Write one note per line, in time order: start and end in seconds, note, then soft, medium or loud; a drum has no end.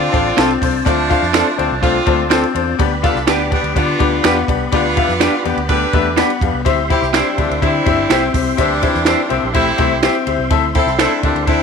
0.00 0.58 C4 loud
0.00 0.35 D4 medium
0.00 0.58 D4 loud
0.00 0.58 F4 loud
0.00 2.76 F4 medium
0.00 2.76 C5 medium
0.00 6.62 D5 medium
0.00 2.76 A5 medium
0.12 0.32 A1 medium
0.12 0.25 C4 loud
0.12 0.25 D4 loud
0.12 0.25 F4 loud
0.12 0.26 A4 loud
0.12 0.26 D5 loud
0.12 kick medium
0.12 ride medium
0.36 0.56 C2 medium
0.36 0.49 C4 loud
0.36 0.50 C4 medium
0.36 0.83 C4 medium
0.36 0.50 D4 loud
0.36 0.50 F4 loud
0.36 0.50 F4 medium
0.36 0.50 A4 loud
0.36 0.51 A4 medium
0.36 0.50 C5 loud
0.36 finger snap loud
0.36 snare loud
0.36 ride medium
0.51 ride soft
0.61 0.80 C2 medium
0.61 0.74 C4 medium
0.61 0.74 D4 medium
0.61 0.74 F4 medium
0.61 0.74 A4 medium
0.61 0.75 C5 medium
0.61 kick medium
0.61 open hi-hat medium
0.61 ride medium
0.85 1.13 D2 loud
0.85 1.55 F3 loud
0.85 1.55 A3 loud
0.85 0.98 C4 loud
0.85 0.98 D4 loud
0.85 1.55 D4 loud
0.85 0.98 F4 loud
0.85 0.98 A4 loud
0.85 0.99 D5 loud
0.85 kick loud
0.85 hi-hat pedal medium
0.85 ride medium
1.09 1.22 C4 medium
1.09 1.22 D4 medium
1.09 1.22 F4 medium
1.09 1.24 F4 medium
1.09 1.22 A4 medium
1.09 1.22 C5 medium
1.09 kick loud
1.09 snare soft
1.09 ride medium
1.23 1.41 F2 medium
1.23 snare soft
1.33 1.46 C4 medium
1.33 1.46 D4 medium
1.33 1.49 D4 medium
1.33 1.46 F4 medium
1.33 1.47 F4 medium
1.33 1.47 A4 medium
1.33 1.47 A4 loud
1.33 1.47 C5 loud
1.33 finger snap loud
1.33 snare loud
1.33 ride medium
1.57 1.68 D2 medium
1.57 1.78 F3 medium
1.57 1.78 A3 medium
1.57 1.70 C4 medium
1.57 1.73 C4 medium
1.57 1.70 D4 medium
1.57 1.78 D4 medium
1.57 1.70 F4 medium
1.57 1.71 A4 medium
1.57 1.71 C5 medium
1.57 ride medium
1.71 1.98 C2 medium
1.81 1.97 A3 medium
1.81 1.94 C4 medium
1.81 2.28 C4 loud
1.81 1.94 D4 medium
1.81 2.28 D4 loud
1.81 1.95 F4 medium
1.81 2.28 F4 loud
1.81 1.95 A4 medium
1.81 1.95 C5 loud
1.81 kick medium
1.81 ride medium
2.06 2.43 D2 medium
2.06 2.22 A3 medium
2.06 2.19 C4 loud
2.06 2.19 D4 loud
2.06 2.19 F4 loud
2.06 2.19 A4 loud
2.06 2.19 C5 loud
2.06 kick loud
2.06 ride medium
2.29 2.42 C4 loud
2.29 2.43 C4 medium
2.29 2.77 C4 medium
2.29 2.43 D4 loud
2.29 2.43 F4 loud
2.29 2.44 F4 medium
2.29 2.43 A4 loud
2.29 2.44 A4 medium
2.29 2.43 C5 loud
2.29 finger snap loud
2.29 snare loud
2.29 ride medium
2.43 ride soft
2.54 2.73 E2 loud
2.54 2.67 C4 medium
2.54 2.67 D4 medium
2.54 2.67 F4 medium
2.54 2.67 A4 medium
2.54 2.67 C5 medium
2.54 ride medium
2.79 3.06 D2 loud
2.79 2.91 B3 loud
2.79 2.91 D4 loud
2.79 6.62 G4 medium
2.79 2.92 G4 loud
2.79 6.61 B4 medium
2.79 2.92 B4 loud
2.79 2.92 D5 loud
2.79 6.62 B5 medium
2.79 kick loud
2.79 ride medium
3.02 3.15 B3 medium
3.02 3.15 D4 medium
3.02 3.23 D4 medium
3.02 3.23 F4 loud
3.02 3.18 F4 medium
3.02 3.15 G4 medium
3.02 3.23 A4 loud
3.02 3.16 B4 medium
3.02 3.16 D5 loud
3.02 kick loud
3.02 snare soft
3.02 ride medium
3.15 3.24 C2 medium
3.15 snare soft
3.26 3.55 D2 loud
3.26 3.39 B3 medium
3.26 3.48 B3 medium
3.26 3.39 D4 medium
3.26 3.40 D4 medium
3.26 3.73 D4 medium
3.26 3.48 D4 medium
3.26 3.40 G4 medium
3.26 3.40 G4 loud
3.26 3.48 G4 medium
3.26 3.40 B4 medium
3.26 3.41 B4 loud
3.26 3.40 D5 medium
3.26 finger snap medium
3.26 snare loud
3.26 ride medium
3.50 3.72 G3 medium
3.50 3.64 B3 medium
3.50 3.72 B3 medium
3.50 3.64 D4 medium
3.50 3.72 D4 loud
3.50 3.64 G4 medium
3.50 3.64 B4 medium
3.50 3.64 D5 medium
3.50 kick medium
3.50 ride medium
3.63 3.73 D2 medium
3.63 ride soft
3.74 3.94 D3 loud
3.74 3.87 B3 medium
3.74 4.45 B3 loud
3.74 3.88 D4 medium
3.74 4.22 D4 medium
3.74 4.45 D4 loud
3.74 4.45 F4 loud
3.74 3.88 G4 medium
3.74 3.88 B4 medium
3.74 3.88 D5 loud
3.74 kick loud
3.74 ride medium
3.99 4.18 D2 medium
3.99 4.12 B3 loud
3.99 4.12 D4 loud
3.99 4.12 G4 loud
3.99 4.12 B4 loud
3.99 4.12 D5 loud
3.99 kick loud
3.99 ride medium
4.23 4.42 E2 loud
4.23 4.36 B3 loud
4.23 4.70 B3 medium
4.23 4.36 D4 loud
4.23 4.37 D4 medium
4.23 4.36 G4 loud
4.23 4.37 G4 medium
4.23 4.36 B4 loud
4.23 4.37 B4 loud
4.23 4.37 D5 loud
4.23 finger snap loud
4.23 snare loud
4.23 ride medium
4.48 4.66 C2 medium
4.48 4.60 B3 medium
4.48 4.60 D4 medium
4.48 4.61 G4 medium
4.48 4.61 B4 medium
4.48 4.61 D5 medium
4.48 kick medium
4.48 ride medium
4.72 5.00 D2 loud
4.72 4.84 B3 loud
4.72 5.42 B3 loud
4.72 4.85 D4 loud
4.72 5.42 D4 loud
4.72 5.42 F4 loud
4.72 4.85 G4 loud
4.72 4.85 B4 loud
4.72 4.85 D5 loud
4.72 kick loud
4.72 ride medium
4.95 5.08 B3 medium
4.95 5.09 D4 medium
4.95 5.12 F4 medium
4.95 5.09 G4 medium
4.95 5.09 B4 medium
4.95 5.09 E5 medium
4.95 kick loud
4.95 ride medium
5.08 5.27 F2 medium
5.08 snare soft
5.19 5.32 B3 medium
5.19 5.33 D4 medium
5.19 5.35 D4 medium
5.19 5.33 G4 medium
5.19 5.33 B4 medium
5.19 5.34 B4 loud
5.19 5.33 D5 loud
5.19 finger snap medium
5.19 snare loud
5.19 ride medium
5.44 5.54 E2 medium
5.44 5.57 B3 medium
5.44 5.60 B3 medium
5.44 5.65 B3 medium
5.44 5.57 D4 medium
5.44 5.65 D4 medium
5.44 5.57 G4 medium
5.44 5.65 G4 medium
5.44 5.57 B4 medium
5.44 5.57 D5 medium
5.44 ride medium
5.57 5.84 D2 medium
5.57 ride soft
5.69 5.84 A3 medium
5.69 5.81 B3 medium
5.69 5.81 D4 medium
5.69 6.15 D4 loud
5.69 5.82 G4 medium
5.69 6.15 G4 loud
5.69 6.15 B4 loud
5.69 5.82 B4 medium
5.69 5.82 D5 medium
5.69 kick medium
5.69 ride medium
5.93 6.20 E2 medium
5.93 6.08 A3 medium
5.93 6.05 B3 loud
5.93 6.06 D4 loud
5.93 6.06 G4 loud
5.93 6.06 B4 loud
5.93 6.06 E5 loud
5.93 kick loud
5.93 ride medium
6.16 6.29 B3 loud
6.16 6.63 B3 medium
6.16 6.29 D4 medium
6.16 6.29 D4 loud
6.16 6.29 G4 medium
6.16 6.30 G4 medium
6.16 6.30 B4 loud
6.16 6.30 B4 medium
6.16 6.30 D5 loud
6.16 finger snap loud
6.16 snare loud
6.16 ride medium
6.30 ride soft
6.41 6.50 F2 medium
6.41 6.53 B3 medium
6.41 6.54 D4 medium
6.41 6.54 G4 medium
6.41 6.54 B4 medium
6.41 6.54 F5 medium
6.41 kick medium
6.41 ride medium
6.53 6.62 C2 medium
6.65 6.93 D2 loud
6.65 6.77 C4 loud
6.65 6.78 E4 loud
6.65 6.78 G4 loud
6.65 10.48 G4 medium
6.65 6.78 C5 loud
6.65 10.48 C5 medium
6.65 6.78 E5 loud
6.65 11.63 E5 medium
6.65 11.63 C6 medium
6.65 kick loud
6.65 ride medium
6.89 7.02 C4 medium
6.89 7.10 C4 medium
6.89 7.02 E4 medium
6.89 7.04 E4 medium
6.89 7.09 E4 medium
6.89 7.02 G4 medium
6.89 7.09 G4 loud
6.89 7.02 C5 medium
6.89 7.02 E5 medium
6.89 kick loud
6.89 ride medium
7.02 7.20 C2 medium
7.02 snare soft
7.13 7.34 G3 medium
7.13 7.26 C4 medium
7.13 7.34 C4 medium
7.13 7.60 D4 medium
7.13 7.26 E4 medium
7.13 7.34 E4 medium
7.13 7.26 G4 medium
7.13 7.26 C5 medium
7.13 7.27 C5 loud
7.13 7.26 E5 loud
7.13 finger snap loud
7.13 snare loud
7.13 ride medium
7.37 7.47 D2 medium
7.37 7.58 G3 medium
7.37 7.58 A#3 medium
7.37 7.50 C4 medium
7.37 7.58 D4 loud
7.37 7.50 E4 medium
7.37 7.50 G4 medium
7.37 7.50 C5 medium
7.37 7.50 E5 medium
7.37 kick medium
7.37 ride medium
7.50 7.59 D2 medium
7.50 ride soft
7.61 7.80 D3 loud
7.61 8.31 G3 loud
7.61 7.74 C4 medium
7.61 8.31 C4 loud
7.61 8.08 D4 medium
7.61 7.74 E4 medium
7.61 8.31 E4 loud
7.61 7.74 G4 medium
7.61 7.74 C5 medium
7.61 7.74 E5 medium
7.61 kick medium
7.61 ride medium
7.85 8.04 G1 medium
7.85 7.98 C4 loud
7.85 7.98 E4 loud
7.85 7.98 G4 loud
7.85 7.98 C5 loud
7.85 7.99 E5 loud
7.85 kick loud
7.85 ride medium
8.09 8.28 C2 medium
8.09 8.22 C4 loud
8.09 8.56 C4 medium
8.09 8.22 E4 medium
8.09 8.22 G4 loud
8.09 8.23 G4 medium
8.09 8.22 C5 loud
8.09 8.23 C5 loud
8.09 8.23 E5 loud
8.09 finger snap loud
8.09 snare loud
8.09 ride medium
8.34 8.52 C2 medium
8.34 8.46 C4 medium
8.34 8.46 E4 medium
8.34 8.47 G4 medium
8.34 8.47 C5 medium
8.34 8.47 E5 medium
8.34 kick loud
8.34 open hi-hat medium
8.34 ride medium
8.57 8.86 D2 loud
8.57 9.27 E3 loud
8.57 9.27 G3 loud
8.57 8.70 C4 loud
8.57 9.27 D4 loud
8.57 8.70 E4 loud
8.57 8.70 G4 loud
8.57 8.70 C5 loud
8.57 8.71 E5 loud
8.57 kick loud
8.57 hi-hat pedal medium
8.57 ride medium
8.81 8.94 C4 medium
8.81 8.94 E4 medium
8.81 8.97 E4 medium
8.81 8.94 G4 medium
8.81 8.95 C5 medium
8.81 8.95 E5 medium
8.81 kick loud
8.81 snare soft
8.81 ride medium
8.94 9.13 E2 medium
8.94 snare soft
9.05 9.18 C4 medium
9.05 9.21 D4 medium
9.05 9.18 E4 medium
9.05 9.19 E4 medium
9.05 9.19 G4 medium
9.05 9.19 C5 medium
9.05 9.20 C5 medium
9.05 9.19 E5 loud
9.05 finger snap medium
9.05 snare loud
9.05 ride medium
9.29 9.40 C2 loud
9.29 9.50 G3 medium
9.29 9.50 A#3 medium
9.29 9.42 C4 medium
9.29 9.45 C4 medium
9.29 9.50 D4 medium
9.29 9.42 E4 medium
9.29 9.42 G4 medium
9.29 9.42 C5 medium
9.29 9.43 E5 medium
9.29 ride medium
9.43 9.70 A#1 medium
9.53 10.00 G3 loud
9.53 9.69 A3 medium
9.53 9.66 C4 medium
9.53 10.00 C4 loud
9.53 10.00 E4 loud
9.53 9.67 E4 medium
9.53 9.67 G4 medium
9.53 9.67 C5 medium
9.53 9.67 E5 loud
9.53 kick medium
9.53 ride medium
9.78 10.06 C2 medium
9.78 9.93 A3 medium
9.78 9.91 C4 loud
9.78 9.91 E4 loud
9.78 9.91 G4 loud
9.78 9.91 C5 loud
9.78 9.91 E5 loud
9.78 kick loud
9.78 ride medium
10.02 10.15 C4 loud
10.02 10.48 C4 medium
10.02 10.15 E4 medium
10.02 10.15 G4 loud
10.02 10.15 G4 medium
10.02 10.15 C5 loud
10.02 10.16 C5 loud
10.02 10.15 E5 loud
10.02 finger snap loud
10.02 snare loud
10.02 ride medium
10.15 ride soft
10.26 10.36 D2 medium
10.26 10.39 C4 medium
10.26 10.39 E4 medium
10.26 10.39 G4 medium
10.26 10.39 C5 medium
10.26 10.39 E5 medium
10.26 ride medium
10.38 10.48 C2 loud
10.50 10.78 D2 loud
10.50 10.63 C4 loud
10.50 10.63 E4 loud
10.50 11.63 A4 medium
10.50 10.63 A4 loud
10.50 11.63 C5 medium
10.50 10.63 C5 loud
10.50 10.63 E5 loud
10.50 kick loud
10.50 ride medium
10.74 10.87 C4 medium
10.74 10.95 C4 loud
10.74 10.87 E4 medium
10.74 10.89 E4 medium
10.74 10.95 E4 medium
10.74 10.87 A4 medium
10.74 10.95 A4 loud
10.74 10.87 C5 medium
10.74 10.88 E5 medium
10.74 kick loud
10.74 snare soft
10.74 ride medium
10.86 11.05 C2 medium
10.86 snare soft
10.99 11.19 A3 medium
10.99 11.11 C4 medium
10.99 11.18 C4 medium
10.99 11.45 D4 medium
10.99 11.11 E4 medium
10.99 11.19 E4 loud
10.99 11.11 A4 medium
10.99 11.12 A4 medium
10.99 11.12 C5 medium
10.99 11.12 E5 loud
10.99 finger snap medium
10.99 snare loud
10.99 ride medium
11.23 11.32 D2 loud
11.23 11.43 G3 medium
11.23 11.43 A#3 medium
11.23 11.35 C4 medium
11.23 11.43 D4 medium
11.23 11.36 E4 medium
11.23 11.36 A4 medium
11.23 11.36 C5 medium
11.23 11.36 E5 loud
11.23 kick medium
11.23 ride medium
11.35 11.62 D2 medium
11.35 ride soft
11.46 11.63 A3 loud
11.46 11.59 C4 medium
11.46 11.63 C4 loud
11.46 11.63 D4 loud
11.46 11.59 E4 medium
11.46 11.63 E4 loud
11.46 11.59 A4 medium
11.46 11.60 C5 medium
11.46 11.60 E5 loud
11.46 kick medium
11.46 ride medium